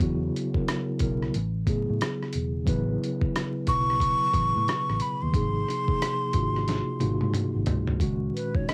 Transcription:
Already playing: G#4
0.00 E2 C#3 F#3 B3 E4 F#4, kick, closed hi-hat
0.36 closed hi-hat
0.53 C#3 F#3 B3 E4 A#4, kick
0.68 cross-stick, closed hi-hat
0.98 B1 C#3 F#3 B3 E4, kick, closed hi-hat
1.02 A#4
1.22 cross-stick
1.34 A1, closed hi-hat
1.65 A2 C#3 F#3 B3 E4, kick, closed hi-hat
1.69 G#4
1.89 A2
2.01 cross-stick, closed hi-hat
2.23 cross-stick
2.33 E1, closed hi-hat
2.65 A1 C#3 F#3 B3 E4, kick, closed hi-hat
2.69 B4
3.04 closed hi-hat
3.21 kick
3.36 cross-stick, closed hi-hat
3.65 B1 B2 F#3 B3 E4 C#6, kick, closed hi-hat
3.69 C#3 B4
3.90 cross-stick
4.00 kick, closed hi-hat
4.34 A1, kick, closed hi-hat
4.56 A2
4.68 muted fingered electric bass stroke, cross-stick, closed hi-hat
4.89 A1, cross-stick
5.00 B5, closed hi-hat
5.22 D#2 C6
5.32 G#1 C3 F3 A#3 D#4 G#4, kick, closed hi-hat
5.68 cross-stick, closed hi-hat
5.86 C3 F3 A#3 D#4, kick
5.90 G#4
6.02 cross-stick, closed hi-hat
6.32 G#1 C3 A#3 D#4 F4 F#4, kick, closed hi-hat
6.56 cross-stick
6.68 snare, closed hi-hat
6.98 G#1 C3 A#3 D#4 F4 F#4, closed hi-hat, high tom
7.21 G#2, high tom
7.34 muted fingered electric bass stroke, closed hi-hat, mid tom
7.56 G#1
7.66 G#2, closed hi-hat, floor tom
7.88 floor tom
7.98 C#2 A#2 D#3 G#3 C#4, kick, closed hi-hat
8.02 F#4
8.35 B4, closed hi-hat
8.52 A#2 D#3 G#3 C#4 C#5, kick
8.56 D#4
8.68 D#5, cross-stick, closed hi-hat

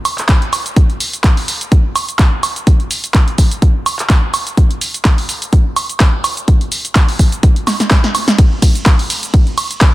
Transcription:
0.05 open hi-hat, high woodblock, shaker
0.18 clap, closed hi-hat, shaker
0.29 kick, clap, closed hi-hat, shaker
0.42 closed hi-hat
0.53 open hi-hat, high woodblock, shaker
0.66 closed hi-hat, shaker
0.76 kick, closed hi-hat, shaker
0.90 closed hi-hat
1.00 open hi-hat, shaker
1.13 closed hi-hat, shaker
1.24 kick, clap, closed hi-hat, shaker
1.37 open hi-hat
1.48 open hi-hat, shaker
1.61 closed hi-hat, shaker
1.72 kick, closed hi-hat, shaker
1.96 open hi-hat, high woodblock, shaker
2.08 closed hi-hat, shaker
2.19 kick, clap, closed hi-hat, shaker
2.43 open hi-hat, high woodblock, shaker
2.56 closed hi-hat, shaker
2.67 kick, closed hi-hat, shaker
2.80 closed hi-hat
2.91 open hi-hat, shaker
3.04 closed hi-hat, shaker
3.14 kick, clap, closed hi-hat, shaker
3.28 closed hi-hat
3.38 kick, open hi-hat, shaker
3.51 closed hi-hat, shaker
3.62 kick, closed hi-hat, shaker
3.86 open hi-hat, high woodblock, shaker
3.99 clap, closed hi-hat, shaker
4.10 kick, clap, closed hi-hat, shaker
4.34 open hi-hat, high woodblock, shaker
4.47 closed hi-hat, shaker
4.57 kick, closed hi-hat, shaker
4.71 closed hi-hat
4.81 open hi-hat, shaker
4.94 closed hi-hat, shaker
5.05 kick, clap, closed hi-hat, shaker
5.18 open hi-hat
5.29 open hi-hat, shaker
5.42 closed hi-hat, shaker
5.53 kick, closed hi-hat, shaker
5.76 open hi-hat, high woodblock, shaker
5.89 closed hi-hat, shaker
6.00 kick, clap, closed hi-hat, shaker
6.24 open hi-hat, high woodblock, shaker
6.37 closed hi-hat, shaker
6.48 kick, closed hi-hat, shaker
6.61 closed hi-hat
6.72 open hi-hat, shaker
6.85 closed hi-hat, shaker
6.95 kick, clap, closed hi-hat, shaker
7.09 open hi-hat
7.19 kick, open hi-hat, shaker
7.32 closed hi-hat, shaker
7.43 kick, closed hi-hat, shaker
7.56 closed hi-hat
7.67 snare, open hi-hat, high woodblock, shaker
7.80 snare, closed hi-hat, shaker
7.91 kick, snare, clap, closed hi-hat, shaker
8.04 snare
8.15 open hi-hat, high woodblock, shaker
8.28 snare, closed hi-hat, shaker
8.38 kick, closed hi-hat, ride, shaker
8.62 kick, open hi-hat, ride, shaker
8.75 closed hi-hat, shaker
8.86 kick, clap, closed hi-hat, ride, shaker
8.99 open hi-hat
9.10 open hi-hat, ride, shaker
9.23 closed hi-hat, shaker
9.34 kick, closed hi-hat, ride, shaker
9.47 closed hi-hat
9.58 open hi-hat, ride, high woodblock, shaker
9.71 closed hi-hat, shaker
9.81 kick, clap, closed hi-hat, ride, shaker

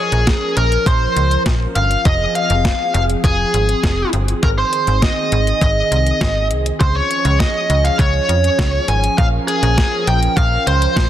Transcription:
Already playing: F3 C#4 G#4 A#4
0.12 A#1, closed hi-hat
0.27 kick, snare, closed hi-hat
0.57 A#1 A#4, closed hi-hat
0.72 closed hi-hat
0.86 A#1 C5, kick, closed hi-hat
1.16 C#2, closed hi-hat
1.31 closed hi-hat
1.46 A#1, kick, snare, closed hi-hat
1.75 G1 F5, closed hi-hat
1.91 closed hi-hat
2.05 F1 C4 G#4 D#5, kick, closed hi-hat
2.35 F5, closed hi-hat
2.50 F1, closed hi-hat
2.65 kick, snare, closed hi-hat
2.94 F1 F5, closed hi-hat
3.10 closed hi-hat
3.24 F1 G#4, kick, closed hi-hat
3.54 G#1, closed hi-hat
3.69 closed hi-hat
3.83 F1, kick, snare, closed hi-hat
4.13 G1, closed hi-hat
4.28 closed hi-hat
4.43 G#1 D#3 A#4, kick, closed hi-hat
4.58 C5
4.73 closed hi-hat
4.87 G#1, closed hi-hat
5.02 D#5, kick, snare, closed hi-hat
5.32 G#1, closed hi-hat
5.47 closed hi-hat
5.61 G#1 D#5, kick, closed hi-hat
5.91 C2, closed hi-hat
6.07 closed hi-hat
6.21 G#1, kick, snare, closed hi-hat
6.51 C2, closed hi-hat
6.66 closed hi-hat
6.80 C#2 F3 C#4 C5, kick, closed hi-hat
6.96 C#5
7.11 closed hi-hat
7.25 C#2 C#5, closed hi-hat
7.40 D#5, kick, snare, closed hi-hat
7.70 C#2, closed hi-hat
7.84 F5, closed hi-hat
7.99 C#2 C#5, kick, closed hi-hat
8.29 F2, closed hi-hat
8.44 closed hi-hat
8.59 C#2, kick, snare, closed hi-hat
8.88 G#1 G#5, closed hi-hat
9.04 closed hi-hat
9.18 A#1 A#4 F5, kick, closed hi-hat
9.48 G#4, closed hi-hat
9.63 A#1, closed hi-hat
9.78 kick, snare, closed hi-hat
10.07 A#1 G5, closed hi-hat
10.23 closed hi-hat
10.37 A#1 F5, kick, closed hi-hat
10.67 C#2 C5, closed hi-hat
10.82 closed hi-hat
10.96 A#1, kick, snare, closed hi-hat

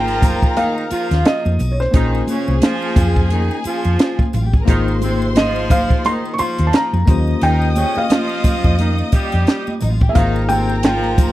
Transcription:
Already playing: G#1 F3 A#3 D#4 F4 G#4 A#4 C5 G5 A#5
0.08 closed hi-hat, muted triangle
0.22 kick, closed hi-hat, muted conga, high conga, low conga, triangle
0.42 kick, muted triangle
0.57 D#3 D#4 F5, closed hi-hat, high conga, muted triangle
0.78 muted triangle
0.90 F3 F4, muted fingered electric bass stroke, closed hi-hat, muted conga, triangle
1.11 D#2, snare, closed hi-hat, muted triangle
1.25 D#5, snare, closed hi-hat, muted conga, muted triangle
1.45 F2, high conga, muted triangle
1.59 B1, closed hi-hat, muted conga, low conga, triangle
1.72 C#5
1.80 C5, snare, muted triangle
1.91 A#1 D#3 A#3 C#4 D#4 F4 G#4 G#5, kick, closed hi-hat, muted triangle
1.96 C5
2.15 muted triangle
2.27 C#3 C#4, closed hi-hat, high conga, triangle
2.48 C2, muted triangle
2.62 F3 F4, snare, closed hi-hat, muted conga, high conga, muted triangle
2.82 muted triangle
2.96 F2, kick, closed hi-hat, high conga, low conga, triangle
3.16 kick, muted triangle
3.30 D#3 D#4, closed hi-hat, muted conga, high conga, muted triangle
3.51 muted triangle
3.64 F3 F4, muted fingered electric bass stroke, closed hi-hat, muted conga, triangle
3.84 F2, closed hi-hat, muted triangle
3.99 snare, closed hi-hat, muted triangle
4.19 kick, high conga, muted triangle
4.33 A1 F4 F5, closed hi-hat, low conga, triangle
4.44 G4 G5
4.54 G#4 G#5, kick, muted triangle
4.62 A#3 A#4 A#5
4.67 G#1 D#3 D#4 F4 G#4 C5 C6, kick, closed hi-hat, muted conga, muted triangle
4.88 muted triangle
5.01 C3 C4, closed hi-hat, muted conga, high conga, triangle
5.22 muted triangle
5.35 F3 F4 D#5, snare, closed hi-hat, high conga, muted triangle
5.56 muted triangle
5.70 F5, kick, closed hi-hat, muted conga, high conga, low conga, triangle
5.90 kick, muted triangle
6.05 D#3 D#4 C6, closed hi-hat, high conga, muted triangle
6.25 muted triangle
6.34 C#6
6.38 F3 F4 C6, muted fingered electric bass stroke, closed hi-hat, muted conga, triangle
6.58 D#2, closed hi-hat, muted triangle
6.67 A5
6.73 A#5, snare, closed hi-hat, muted conga, muted triangle
6.93 F2, high conga, muted triangle
7.06 D#2 A#3 C#4 F4 G4 D#5 D#6, kick, closed hi-hat, muted conga, low conga, triangle
7.10 C5
7.28 muted triangle
7.42 D#2 D#3 D#4 G5, closed hi-hat, muted triangle
7.62 muted triangle
7.76 C#3 C#4, closed hi-hat, muted conga, high conga, triangle
7.96 F5, muted fingered electric bass stroke, muted triangle
8.10 F3 F4, snare, closed hi-hat, muted conga, high conga, muted triangle
8.29 muted triangle
8.44 muted fingered electric bass stroke, kick, closed hi-hat, high conga, low conga, triangle
8.64 F2, kick, muted triangle
8.79 D#3 D#4, closed hi-hat, high conga, muted triangle
8.99 muted triangle
9.12 G3 G4, muted fingered electric bass stroke, kick, closed hi-hat, triangle
9.32 F2, closed hi-hat, muted triangle
9.47 snare, closed hi-hat, muted triangle
9.67 high conga, muted triangle
9.81 A1 D#4 D#5, closed hi-hat, low conga, triangle
9.91 F4 F5
10.01 G4 G5, kick, muted triangle
10.09 G#4 E5 G#5
10.13 G#1 D#3 A#3 D#4 F4 G#4 A#4 F5 A#5, kick, closed hi-hat, muted triangle
10.18 C5
10.36 muted triangle
10.49 C3 C4 G5, closed hi-hat, muted conga, high conga, triangle
10.70 muted triangle
10.83 F3 F4, snare, closed hi-hat, high conga, muted triangle
11.04 muted triangle
11.18 kick, closed hi-hat, muted conga, high conga, low conga, triangle

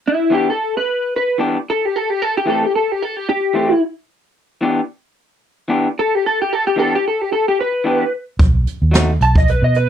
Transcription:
0.08 E4
0.30 E3 B3 D4 G4
0.35 G4
0.50 A4
0.77 B4
1.16 B4
1.38 E3 B3 D4 G4
1.70 A4
1.85 G4
1.96 A4
2.10 G4
2.22 A4
2.37 G4
2.46 E3 A3 C4 G4 A4
2.64 G4
2.75 A4
2.92 G4
3.02 A4
3.17 G4
3.29 G4
3.54 E3 A3 C4 G4
4.61 E3 B3 D4 G4
5.68 E3 B3 D4 G4
5.99 A4
6.15 G4
6.26 A4
6.42 G4
6.53 A4
6.67 G4
6.76 E3 B3 D4 G4 A4
6.95 G4
7.08 A4
7.21 G4
7.33 A4
7.48 G4
7.61 B4
7.84 E3 B3 D4 G4
8.39 B1, kick, closed hi-hat
8.67 closed hi-hat
8.82 D#2
8.91 F#3 A3 D#4 F#4, snare, closed hi-hat
9.21 B1 A5, closed hi-hat
9.35 D#5, kick
9.48 B4, closed hi-hat
9.62 B2 D#5
9.74 B4, closed hi-hat

